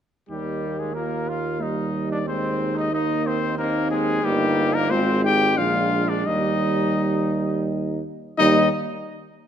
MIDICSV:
0, 0, Header, 1, 6, 480
1, 0, Start_track
1, 0, Key_signature, -3, "major"
1, 0, Tempo, 660793
1, 219, Time_signature, 3, 2, 24, 8
1, 4056, Tempo, 698487
1, 6730, End_track
2, 0, Start_track
2, 0, Title_t, "Trumpet"
2, 0, Program_c, 0, 56
2, 212, Note_on_c, 0, 67, 49
2, 577, Note_on_c, 0, 68, 47
2, 588, Note_off_c, 0, 67, 0
2, 688, Note_off_c, 0, 68, 0
2, 692, Note_on_c, 0, 70, 49
2, 941, Note_on_c, 0, 77, 57
2, 952, Note_off_c, 0, 70, 0
2, 1184, Note_on_c, 0, 75, 49
2, 1195, Note_off_c, 0, 77, 0
2, 1536, Note_off_c, 0, 75, 0
2, 1540, Note_on_c, 0, 74, 57
2, 1654, Note_off_c, 0, 74, 0
2, 1659, Note_on_c, 0, 72, 67
2, 2007, Note_off_c, 0, 72, 0
2, 2022, Note_on_c, 0, 75, 67
2, 2135, Note_off_c, 0, 75, 0
2, 2139, Note_on_c, 0, 75, 70
2, 2376, Note_on_c, 0, 72, 71
2, 2387, Note_off_c, 0, 75, 0
2, 2598, Note_off_c, 0, 72, 0
2, 2603, Note_on_c, 0, 70, 71
2, 2834, Note_off_c, 0, 70, 0
2, 2838, Note_on_c, 0, 68, 74
2, 3087, Note_on_c, 0, 67, 90
2, 3098, Note_off_c, 0, 68, 0
2, 3450, Note_on_c, 0, 70, 81
2, 3461, Note_off_c, 0, 67, 0
2, 3562, Note_on_c, 0, 72, 83
2, 3573, Note_off_c, 0, 70, 0
2, 3808, Note_off_c, 0, 72, 0
2, 3812, Note_on_c, 0, 79, 91
2, 4049, Note_on_c, 0, 77, 75
2, 4060, Note_off_c, 0, 79, 0
2, 4403, Note_on_c, 0, 74, 62
2, 4413, Note_off_c, 0, 77, 0
2, 4523, Note_on_c, 0, 75, 77
2, 4534, Note_off_c, 0, 74, 0
2, 5495, Note_off_c, 0, 75, 0
2, 5980, Note_on_c, 0, 75, 94
2, 6192, Note_off_c, 0, 75, 0
2, 6730, End_track
3, 0, Start_track
3, 0, Title_t, "French horn"
3, 0, Program_c, 1, 60
3, 217, Note_on_c, 1, 63, 36
3, 674, Note_off_c, 1, 63, 0
3, 696, Note_on_c, 1, 65, 39
3, 1178, Note_on_c, 1, 63, 37
3, 1189, Note_off_c, 1, 65, 0
3, 1647, Note_off_c, 1, 63, 0
3, 1652, Note_on_c, 1, 63, 48
3, 2587, Note_off_c, 1, 63, 0
3, 2602, Note_on_c, 1, 63, 56
3, 3070, Note_off_c, 1, 63, 0
3, 3079, Note_on_c, 1, 63, 66
3, 3566, Note_on_c, 1, 65, 63
3, 3577, Note_off_c, 1, 63, 0
3, 3809, Note_on_c, 1, 63, 63
3, 3820, Note_off_c, 1, 65, 0
3, 4055, Note_on_c, 1, 62, 55
3, 4065, Note_off_c, 1, 63, 0
3, 4519, Note_off_c, 1, 62, 0
3, 4523, Note_on_c, 1, 63, 54
3, 5722, Note_off_c, 1, 63, 0
3, 5976, Note_on_c, 1, 63, 77
3, 6190, Note_off_c, 1, 63, 0
3, 6730, End_track
4, 0, Start_track
4, 0, Title_t, "Trumpet"
4, 0, Program_c, 2, 56
4, 213, Note_on_c, 2, 55, 42
4, 554, Note_off_c, 2, 55, 0
4, 573, Note_on_c, 2, 56, 37
4, 681, Note_on_c, 2, 58, 43
4, 692, Note_off_c, 2, 56, 0
4, 931, Note_on_c, 2, 65, 47
4, 942, Note_off_c, 2, 58, 0
4, 1170, Note_on_c, 2, 63, 43
4, 1181, Note_off_c, 2, 65, 0
4, 1528, Note_off_c, 2, 63, 0
4, 1532, Note_on_c, 2, 62, 48
4, 1587, Note_off_c, 2, 62, 0
4, 1640, Note_on_c, 2, 60, 51
4, 1999, Note_on_c, 2, 63, 49
4, 2010, Note_off_c, 2, 60, 0
4, 2123, Note_off_c, 2, 63, 0
4, 2127, Note_on_c, 2, 63, 62
4, 2357, Note_off_c, 2, 63, 0
4, 2362, Note_on_c, 2, 60, 57
4, 2600, Note_off_c, 2, 60, 0
4, 2605, Note_on_c, 2, 58, 61
4, 2839, Note_off_c, 2, 58, 0
4, 2849, Note_on_c, 2, 56, 67
4, 3086, Note_on_c, 2, 55, 70
4, 3097, Note_off_c, 2, 56, 0
4, 3442, Note_off_c, 2, 55, 0
4, 3446, Note_on_c, 2, 58, 64
4, 3577, Note_on_c, 2, 60, 72
4, 3588, Note_off_c, 2, 58, 0
4, 3806, Note_off_c, 2, 60, 0
4, 3811, Note_on_c, 2, 67, 72
4, 4049, Note_off_c, 2, 67, 0
4, 4053, Note_on_c, 2, 65, 61
4, 4410, Note_on_c, 2, 62, 58
4, 4420, Note_off_c, 2, 65, 0
4, 4522, Note_off_c, 2, 62, 0
4, 4526, Note_on_c, 2, 63, 58
4, 5477, Note_off_c, 2, 63, 0
4, 5978, Note_on_c, 2, 63, 72
4, 6191, Note_off_c, 2, 63, 0
4, 6730, End_track
5, 0, Start_track
5, 0, Title_t, "Trombone"
5, 0, Program_c, 3, 57
5, 221, Note_on_c, 3, 58, 37
5, 1178, Note_on_c, 3, 55, 39
5, 1189, Note_off_c, 3, 58, 0
5, 1647, Note_off_c, 3, 55, 0
5, 1652, Note_on_c, 3, 56, 44
5, 2121, Note_off_c, 3, 56, 0
5, 2129, Note_on_c, 3, 58, 49
5, 2603, Note_on_c, 3, 60, 51
5, 2614, Note_off_c, 3, 58, 0
5, 3072, Note_off_c, 3, 60, 0
5, 3076, Note_on_c, 3, 58, 61
5, 3562, Note_on_c, 3, 56, 62
5, 3573, Note_off_c, 3, 58, 0
5, 4045, Note_off_c, 3, 56, 0
5, 4050, Note_on_c, 3, 56, 56
5, 4522, Note_on_c, 3, 55, 54
5, 4532, Note_off_c, 3, 56, 0
5, 5746, Note_off_c, 3, 55, 0
5, 5981, Note_on_c, 3, 55, 76
5, 6193, Note_off_c, 3, 55, 0
5, 6730, End_track
6, 0, Start_track
6, 0, Title_t, "Tuba"
6, 0, Program_c, 4, 58
6, 219, Note_on_c, 4, 39, 45
6, 3055, Note_off_c, 4, 39, 0
6, 3084, Note_on_c, 4, 31, 68
6, 3563, Note_on_c, 4, 32, 66
6, 3574, Note_off_c, 4, 31, 0
6, 4056, Note_on_c, 4, 34, 62
6, 4067, Note_off_c, 4, 32, 0
6, 4526, Note_off_c, 4, 34, 0
6, 4530, Note_on_c, 4, 39, 56
6, 5726, Note_off_c, 4, 39, 0
6, 5987, Note_on_c, 4, 39, 79
6, 6196, Note_off_c, 4, 39, 0
6, 6730, End_track
0, 0, End_of_file